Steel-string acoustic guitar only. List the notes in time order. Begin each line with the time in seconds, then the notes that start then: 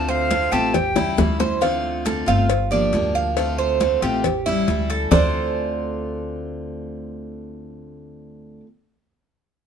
Already playing: D3 A3 C4 F4
0.30 D3 A3 C4 F4
0.52 A3 C4 F4
0.74 muted steel-string acoustic guitar stroke
0.96 G3 C#4 E4
1.17 E3 G3 C#4 E4
1.61 D3 A3 C4 F4
2.05 D3 A3 C4 F4
2.26 A3 C4 F4
2.49 muted steel-string acoustic guitar stroke
2.71 F3 A#3 D4 G4
2.92 F3 A#3 D4 G4
3.37 D3 A3 C4 F4
3.80 D3 A3 C4 F4
4.02 A3 C4 F4
4.25 muted steel-string acoustic guitar stroke
4.46 G3 C#4 E4
4.68 E3 G3 C#4 E4
5.12 D3 A3 C4 F4